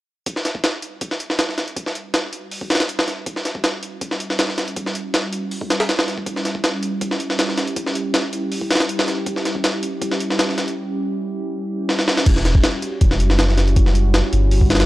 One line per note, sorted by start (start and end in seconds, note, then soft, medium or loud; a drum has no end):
0.26 12.23 G3 medium
0.26 12.23 C#4 medium
0.26 12.23 E4 medium
0.26 6.25 F#4 medium
0.26 kick loud
0.26 closed hi-hat medium
0.36 snare soft
0.45 snare soft
0.45 closed hi-hat medium
0.55 kick medium
0.64 snare loud
0.64 closed hi-hat medium
0.82 closed hi-hat medium
1.01 kick loud
1.01 closed hi-hat medium
1.11 snare soft
1.20 closed hi-hat medium
1.30 snare soft
1.39 snare loud
1.39 closed hi-hat medium
1.49 snare soft
1.58 snare soft
1.58 closed hi-hat medium
1.68 closed hi-hat soft
1.76 kick loud
1.76 closed hi-hat medium
1.86 snare soft
1.95 closed hi-hat medium
2.14 snare loud
2.14 closed hi-hat medium
2.33 closed hi-hat medium
2.51 open hi-hat medium
2.61 kick medium
2.70 snare medium
2.70 closed hi-hat medium
2.75 snare medium
2.75 closed hi-hat medium
2.80 snare medium
2.80 closed hi-hat medium
2.89 closed hi-hat medium
2.99 snare loud
3.08 snare soft
3.08 closed hi-hat medium
3.26 kick loud
3.26 closed hi-hat medium
3.36 snare soft
3.45 snare soft
3.45 closed hi-hat medium
3.55 kick medium
3.64 snare loud
3.64 closed hi-hat medium
3.83 closed hi-hat medium
4.01 kick loud
4.01 closed hi-hat medium
4.11 snare soft
4.20 closed hi-hat medium
4.30 snare soft
4.39 snare loud
4.39 closed hi-hat medium
4.49 snare soft
4.58 snare medium
4.58 closed hi-hat medium
4.68 closed hi-hat soft
4.76 kick loud
4.76 closed hi-hat medium
4.86 snare soft
4.95 closed hi-hat medium
5.14 snare loud
5.14 closed hi-hat medium
5.33 closed hi-hat medium
5.51 open hi-hat medium
5.61 kick medium
5.70 snare medium
5.70 closed hi-hat medium
5.80 snare medium
5.80 closed hi-hat medium
5.89 snare medium
5.89 closed hi-hat medium
5.99 snare loud
6.08 snare soft
6.08 closed hi-hat medium
6.18 kick medium
6.26 12.24 G4 medium
6.26 kick loud
6.26 closed hi-hat medium
6.36 snare soft
6.45 snare soft
6.45 closed hi-hat medium
6.55 kick medium
6.64 snare loud
6.64 closed hi-hat medium
6.83 closed hi-hat medium
7.01 kick loud
7.01 closed hi-hat medium
7.11 snare soft
7.20 closed hi-hat medium
7.30 snare medium
7.39 snare loud
7.39 closed hi-hat medium
7.49 snare soft
7.57 snare medium
7.57 closed hi-hat medium
7.67 closed hi-hat soft
7.76 kick loud
7.76 closed hi-hat medium
7.86 snare soft
7.95 closed hi-hat medium
8.14 snare loud
8.14 closed hi-hat medium
8.33 closed hi-hat medium
8.52 open hi-hat medium
8.61 kick medium
8.71 snare medium
8.71 closed hi-hat medium
8.75 snare medium
8.75 closed hi-hat medium
8.80 snare medium
8.80 closed hi-hat medium
8.89 closed hi-hat medium
8.99 snare loud
9.08 snare soft
9.08 closed hi-hat medium
9.26 kick loud
9.26 closed hi-hat medium
9.36 snare soft
9.45 snare soft
9.45 closed hi-hat medium
9.55 kick medium
9.64 snare loud
9.64 closed hi-hat medium
9.83 closed hi-hat medium
10.02 kick loud
10.02 closed hi-hat medium
10.11 snare soft
10.20 closed hi-hat medium
10.30 snare medium
10.39 snare loud
10.39 closed hi-hat medium
10.49 snare soft
10.58 snare medium
10.58 closed hi-hat medium
10.68 closed hi-hat soft
11.89 snare medium
11.99 snare medium
12.08 snare medium
12.17 snare medium
12.26 12.63 E1 loud
12.26 14.86 G3 medium
12.26 14.86 C#4 medium
12.26 14.86 E4 medium
12.26 14.86 F#4 medium
12.26 kick loud
12.26 closed hi-hat medium
12.26 crash medium
12.36 snare soft
12.45 snare soft
12.45 closed hi-hat medium
12.55 kick medium
12.64 snare loud
12.64 closed hi-hat medium
12.82 closed hi-hat medium
13.01 13.22 E1 medium
13.01 kick loud
13.01 closed hi-hat medium
13.11 snare soft
13.20 14.22 F#1 loud
13.20 closed hi-hat medium
13.30 snare medium
13.39 snare loud
13.39 closed hi-hat medium
13.49 snare soft
13.58 snare medium
13.58 closed hi-hat medium
13.67 closed hi-hat soft
13.76 kick loud
13.76 closed hi-hat medium
13.86 snare soft
13.95 closed hi-hat medium
14.14 snare loud
14.14 closed hi-hat medium
14.33 14.86 G1 medium
14.33 closed hi-hat medium
14.51 open hi-hat medium
14.61 kick medium
14.70 snare medium
14.70 closed hi-hat medium
14.75 snare medium
14.75 closed hi-hat medium
14.80 snare loud
14.80 closed hi-hat medium